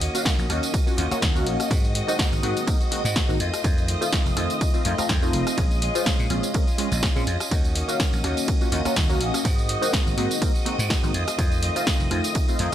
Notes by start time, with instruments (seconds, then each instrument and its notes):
Already playing: string machine D#5 D#6
0.01 clean electric guitar D#3 A#3 C#4 F#4, open hi-hat
0.14 analog polysynth A#3 C#4 F#4 F5, closed hi-hat, tambourine
0.25 clean electric guitar D#3 A#3 C#4 F#4, kick, snare, closed hi-hat, ride, tambourine
0.39 slap bass A#1, closed hi-hat, tambourine
0.49 slap bass D#2, clean electric guitar D#3 A#3 C#4 F#4, analog polysynth A#3 C#4 F#4 F5, cross-stick, open hi-hat
0.63 closed hi-hat, tambourine
0.74 kick, closed hi-hat, ride, tambourine
0.86 analog polysynth A#3 C#4 F4 F#4, clean electric guitar A#3 C#4 F#4, closed hi-hat, tambourine
0.97 slap bass D#2, clean electric guitar D#3 A#3 C#4 F#4, analog polysynth A#3 C#4 F4 F#4, open hi-hat
1.11 analog polysynth A#3 C#4 F4 F#4, clean electric guitar A#3 C#4 F#4, muted slap bass stroke, cross-stick, closed hi-hat, tambourine
1.22 slap bass D#2, clean electric guitar D#3 A#3 C#4 F#4, kick, snare, closed hi-hat, ride, tambourine
1.35 analog polysynth A#3 C#4 F#4 F5, closed hi-hat, tambourine
1.46 slap bass A#1, clean electric guitar D#3 A#3 C#4 F#4, open hi-hat
1.59 clean electric guitar A#3 C#4 F#4, cross-stick, closed hi-hat, tambourine
1.70 slap bass G#2, clean electric guitar D#3 G#3 C4 F#4, kick, closed hi-hat, ride, tambourine
1.84 closed hi-hat, tambourine
1.94 clean electric guitar D#3 G#3 C4 F#4, open hi-hat
2.08 analog polysynth A#3 C4 D#4 F#4, closed hi-hat, tambourine
2.19 clean electric guitar D#3 G#3 C4 F#4, kick, snare, closed hi-hat, ride, tambourine
2.32 slap bass G#1, closed hi-hat, tambourine
2.43 slap bass G#2, clean electric guitar D#3 G#3 C4 F#4, analog polysynth A#3 C4 D#4 F#4, open hi-hat
2.57 closed hi-hat, tambourine
2.67 analog polysynth A#3 C4 D#4 A#4, kick, closed hi-hat, ride, tambourine
2.80 clean electric guitar G#3 C4 F#4, closed hi-hat, tambourine
2.91 clean electric guitar D#3 G#3 C4 F#4, analog polysynth A#3 C4 D#4 F#4, open hi-hat
3.05 slap bass G#2, clean electric guitar G#3 C4 F#4, closed hi-hat, tambourine
3.15 clean electric guitar D#3 G#3 C4 F#4, kick, snare, closed hi-hat, ride, tambourine
3.28 slap bass G#1, analog polysynth A#3 C4 D#4 F#4, closed hi-hat, tambourine
3.40 slap bass F2, clean electric guitar D#3 A3 C4 F4, open hi-hat
3.53 clean electric guitar A3 C4 F4, cross-stick, closed hi-hat, tambourine
3.64 slap bass F2, clean electric guitar D#3 A3 C4 F4, kick, closed hi-hat, ride, tambourine
3.78 closed hi-hat, tambourine
3.88 clean electric guitar D#3 A3 C4 F4, open hi-hat
4.01 analog polysynth A3 C4 D#4 F4, closed hi-hat, tambourine
4.12 clean electric guitar D#3 C4 F4, kick, snare, closed hi-hat, ride, tambourine
4.26 slap bass F1, closed hi-hat, tambourine
4.36 slap bass F2, clean electric guitar D#3 A3 C4 F4, analog polysynth A3 C4 D#4 F4, cross-stick, open hi-hat
4.50 closed hi-hat, tambourine
4.61 kick, closed hi-hat, ride, tambourine
4.74 analog polysynth A3 C4 D#4 F4, clean electric guitar A3 C4 F4, closed hi-hat, tambourine
4.84 slap bass F2, clean electric guitar D#3 A3 C4 F4, analog polysynth A3 C4 D#4 F4, open hi-hat
4.98 analog polysynth A3 C4 D#4 F4, clean electric guitar A3 C4 F4, muted slap bass stroke, cross-stick, closed hi-hat, tambourine
5.09 slap bass F2, clean electric guitar D#3 A3 C4 F4, kick, snare, closed hi-hat, ride, tambourine
5.22 analog polysynth A3 C4 D#4 F4, closed hi-hat, tambourine
5.33 slap bass F1, clean electric guitar D#3 A3 C4 F4, open hi-hat
5.46 clean electric guitar A3 C4 F4, cross-stick, closed hi-hat, tambourine
5.57 slap bass A#1, clean electric guitar G#3 C#4 F4, kick, closed hi-hat, ride, tambourine
5.71 closed hi-hat, tambourine
5.81 clean electric guitar G#3 C#4 F4, open hi-hat
5.95 analog polysynth G#3 C#4 F4 C5, closed hi-hat, tambourine
6.06 clean electric guitar G#3 C#4 F4, kick, snare, closed hi-hat, ride, tambourine
6.19 slap bass A#2, closed hi-hat, tambourine
6.29 slap bass A#1, analog polysynth G#3 C4 C#4 F4, clean electric guitar G#3 C#4 F4, open hi-hat
6.43 closed hi-hat, tambourine
6.54 analog polysynth G#3 C4 C#4 A#4, kick, closed hi-hat, ride, tambourine
6.67 clean electric guitar C#4 F4, closed hi-hat, tambourine
6.78 analog polysynth G#3 C4 C#4 F4, clean electric guitar G#3 C#4 F4, open hi-hat
6.91 slap bass A#1, clean electric guitar C#4 F4, closed hi-hat, tambourine
7.02 clean electric guitar G#3 C#4 F4, kick, snare, closed hi-hat, ride
7.16 slap bass A#2, analog polysynth G#3 C4 C#4 F4, closed hi-hat, tambourine
7.26 slap bass F2, clean electric guitar G#3 C#4 F4, open hi-hat
7.40 clean electric guitar C#4 F4, cross-stick, closed hi-hat, tambourine
7.51 slap bass D#2, clean electric guitar D#3 A#3 C#4 F#4, string machine D#5 D#6, kick, closed hi-hat, ride, tambourine
7.65 closed hi-hat, tambourine
7.75 clean electric guitar D#3 A#3 C#4 F#4, open hi-hat
7.88 analog polysynth A#3 C#4 F#4 F5, closed hi-hat, tambourine
7.99 clean electric guitar D#3 A#3 C#4 F#4, kick, snare, closed hi-hat, ride, tambourine
8.13 slap bass A#1, closed hi-hat, tambourine
8.23 slap bass D#2, clean electric guitar D#3 A#3 C#4 F#4, analog polysynth A#3 C#4 F#4 F5, cross-stick, open hi-hat
8.37 closed hi-hat, tambourine
8.48 kick, closed hi-hat, ride, tambourine
8.61 analog polysynth A#3 C#4 F4 F#4, clean electric guitar A#3 C#4 F#4, closed hi-hat, tambourine
8.72 slap bass D#2, clean electric guitar D#3 A#3 C#4 F#4, analog polysynth A#3 C#4 F4 F#4, open hi-hat
8.85 analog polysynth A#3 C#4 F4 F#4, clean electric guitar A#3 C#4 F#4, muted slap bass stroke, cross-stick, closed hi-hat, tambourine
8.96 slap bass D#2, clean electric guitar D#3 A#3 C#4 F#4, kick, snare, closed hi-hat, ride, tambourine
9.09 analog polysynth A#3 C#4 F#4 F5, closed hi-hat, tambourine
9.20 slap bass A#1, clean electric guitar D#3 A#3 C#4 F#4, open hi-hat
9.33 clean electric guitar A#3 C#4 F#4, cross-stick, closed hi-hat, tambourine
9.44 slap bass G#2, clean electric guitar D#3 G#3 C4 F#4, kick, closed hi-hat, ride, tambourine
9.58 closed hi-hat, tambourine
9.68 clean electric guitar D#3 G#3 C4 F#4, open hi-hat
9.81 analog polysynth A#3 C4 D#4 F#4, closed hi-hat, tambourine
9.93 clean electric guitar D#3 C4 F#4, kick, snare, closed hi-hat, ride, tambourine
10.06 slap bass G#1, closed hi-hat, tambourine
10.17 slap bass G#2, clean electric guitar D#3 G#3 C4 F#4, analog polysynth A#3 C4 D#4 F#4, open hi-hat
10.31 closed hi-hat, tambourine
10.41 analog polysynth A#3 C4 D#4 A#4, kick, closed hi-hat, ride, tambourine
10.54 clean electric guitar G#3 C4 F#4, closed hi-hat, tambourine
10.65 clean electric guitar D#3 G#3 C4 F#4, analog polysynth A#3 C4 D#4 F#4, open hi-hat
10.78 slap bass G#2, clean electric guitar G#3 C4 F#4, closed hi-hat, tambourine
10.90 clean electric guitar D#3 C4 F#4, kick, snare, closed hi-hat, ride, tambourine
11.03 slap bass G#1, analog polysynth A#3 C4 D#4 F#4, closed hi-hat, tambourine
11.13 slap bass F2, clean electric guitar D#3 A3 C4 F4, open hi-hat
11.27 clean electric guitar A3 C4 F4, cross-stick, closed hi-hat, tambourine
11.38 slap bass F2, clean electric guitar D#3 A3 C4 F4, kick, closed hi-hat, ride, tambourine
11.52 closed hi-hat, tambourine
11.62 clean electric guitar D#3 A3 C4 F4, open hi-hat
11.75 analog polysynth A3 C4 D#4 F4, closed hi-hat, tambourine
11.86 clean electric guitar D#3 A3 C4 F4, kick, snare, closed hi-hat, ride, tambourine
12.00 slap bass F1, closed hi-hat, tambourine
12.10 slap bass F2, clean electric guitar D#3 A3 C4 F4, analog polysynth A3 C4 D#4 F4, cross-stick, open hi-hat
12.24 closed hi-hat, tambourine
12.35 kick, closed hi-hat, ride, tambourine
12.48 analog polysynth A3 C4 D#4 F4, clean electric guitar A3 C4 F4, closed hi-hat, tambourine
12.59 slap bass F2, clean electric guitar D#3 A3 C4 F4, analog polysynth A3 C4 D#4 F4, open hi-hat